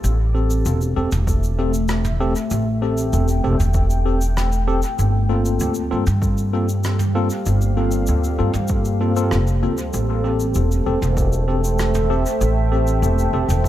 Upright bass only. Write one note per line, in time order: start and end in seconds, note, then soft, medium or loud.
0.04 0.63 A1 medium
0.66 0.93 E1 loud
0.97 1.10 E1 medium
1.12 2.33 E1 medium
2.51 3.10 A1 medium
3.13 3.40 E1 loud
3.44 3.58 E1 medium
3.60 4.80 E1 medium
4.99 5.58 G1 loud
5.61 5.88 D2 loud
5.92 6.05 G2 medium
6.07 7.28 G2 medium
7.46 8.05 G1 loud
8.09 8.36 D2 medium
8.40 8.53 G2 medium
8.55 9.33 G2 medium
9.32 9.64 F1 medium
9.63 9.90 D2 medium
9.94 10.53 A1 medium
10.56 10.83 E1 loud
10.86 11.00 E1 medium
11.02 12.23 E1 medium
12.41 13.00 A1 loud
13.02 13.30 E1 loud
13.33 13.47 E1 medium
13.49 13.69 E1 medium